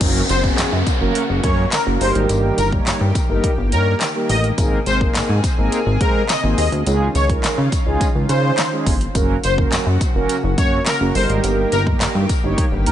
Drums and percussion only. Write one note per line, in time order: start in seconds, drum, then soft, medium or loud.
0.01 kick loud
0.01 closed hi-hat medium
0.01 crash loud
0.01 tambourine soft
0.29 closed hi-hat medium
0.29 tambourine medium
0.44 kick medium
0.58 snare loud
0.58 clap loud
0.58 closed hi-hat loud
0.58 tambourine medium
0.86 kick medium
0.86 closed hi-hat medium
0.86 tambourine soft
1.15 closed hi-hat medium
1.44 kick loud
1.44 closed hi-hat medium
1.72 snare loud
1.72 clap loud
1.72 closed hi-hat loud
1.72 tambourine loud
2.01 open hi-hat medium
2.01 tambourine soft
2.15 closed hi-hat medium
2.29 closed hi-hat medium
2.29 tambourine soft
2.58 closed hi-hat medium
2.58 tambourine medium
2.72 kick medium
2.87 snare loud
2.87 clap loud
2.87 closed hi-hat loud
2.87 tambourine medium
3.15 kick loud
3.15 closed hi-hat medium
3.15 tambourine soft
3.44 kick loud
3.44 closed hi-hat medium
3.72 closed hi-hat medium
3.72 tambourine soft
4.01 snare loud
4.01 clap loud
4.01 closed hi-hat loud
4.01 tambourine loud
4.29 open hi-hat medium
4.29 tambourine soft
4.44 closed hi-hat medium
4.58 kick loud
4.58 closed hi-hat medium
4.58 tambourine soft
4.86 closed hi-hat medium
4.86 tambourine medium
5.01 kick medium
5.15 snare loud
5.15 clap loud
5.15 closed hi-hat loud
5.15 tambourine medium
5.44 kick loud
5.44 closed hi-hat medium
5.44 tambourine soft
5.72 closed hi-hat loud
5.72 tambourine soft
6.01 kick loud
6.01 closed hi-hat medium
6.29 snare loud
6.29 clap loud
6.29 closed hi-hat loud
6.29 tambourine medium
6.58 open hi-hat medium
6.58 tambourine soft
6.72 closed hi-hat medium
6.86 closed hi-hat medium
6.86 tambourine soft
7.15 closed hi-hat medium
7.15 tambourine medium
7.30 kick medium
7.30 closed hi-hat medium
7.44 snare loud
7.44 clap loud
7.44 closed hi-hat loud
7.44 tambourine medium
7.72 kick medium
7.72 closed hi-hat medium
7.72 tambourine soft
8.01 kick loud
8.01 closed hi-hat loud
8.01 tambourine soft
8.29 closed hi-hat medium
8.29 tambourine soft
8.58 snare loud
8.58 clap loud
8.58 closed hi-hat medium
8.58 tambourine medium
8.86 kick medium
8.86 open hi-hat medium
8.86 tambourine soft
9.01 closed hi-hat medium
9.15 kick loud
9.15 closed hi-hat medium
9.15 tambourine soft
9.44 closed hi-hat medium
9.44 tambourine medium
9.58 kick medium
9.72 snare loud
9.72 clap loud
9.72 closed hi-hat loud
9.72 tambourine medium
10.01 kick medium
10.01 closed hi-hat medium
10.01 tambourine soft
10.29 closed hi-hat loud
10.29 tambourine soft
10.58 kick loud
10.58 closed hi-hat medium
10.58 tambourine soft
10.86 snare loud
10.86 clap loud
10.86 closed hi-hat medium
10.86 tambourine medium
11.15 open hi-hat medium
11.15 tambourine soft
11.30 closed hi-hat medium
11.44 closed hi-hat medium
11.44 tambourine soft
11.72 closed hi-hat medium
11.72 tambourine medium
11.87 kick medium
12.01 snare loud
12.01 clap loud
12.01 closed hi-hat loud
12.01 tambourine medium
12.29 kick loud
12.29 closed hi-hat medium
12.29 tambourine soft
12.58 kick loud
12.58 closed hi-hat loud
12.86 closed hi-hat medium